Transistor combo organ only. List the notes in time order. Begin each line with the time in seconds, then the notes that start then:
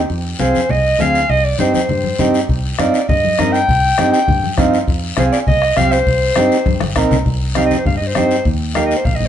0.39 C4 F4 G#4
0.99 C4 F4 G#4
1.59 C4 D#4 G4
2.19 C4 D#4 G4
2.79 C4 D#4 F4
3.39 C4 D#4 A#4
3.98 C4 D#4 G4
4.57 C4 D#4 F4
5.17 C4 F4 G#4
5.76 C4 F4 G4
6.36 C4 D#4 G4
6.96 C4 D#4 A#4
7.55 C4 D#4 G4
8.15 C4 D#4 G4
8.75 A#3 D#4 G4